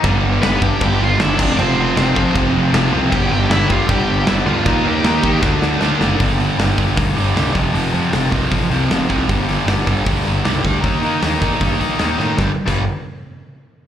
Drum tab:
CC |x---x---x---x-x-|x---x---x---x---|x---x---x---x---|x---x-----------|
HH |----------------|----------------|----------------|----------------|
SD |----o-------o---|----o-------o---|----o-------o---|----o---o-o-o-o-|
BD |o-----o-o-----o-|------o-o-------|o-----o-o-------|o-----o-o-------|

CC |----------------|----------------|----------------|----------------|
HH |o-o-o-o-o-o-o-o-|o-o-o-o-o-o-o-o-|o-o-o-o-o-o-o-o-|o-o-o-o-o-o-o---|
SD |----o-------o---|----o-------o---|----o-------o---|----o-------o-o-|
BD |o-----o-o-----o-|------o-o-----o-|o-----o-o-----o-|o-----o-o-------|

CC |---x------------|
HH |----------------|
SD |o---------------|
BD |o--o------------|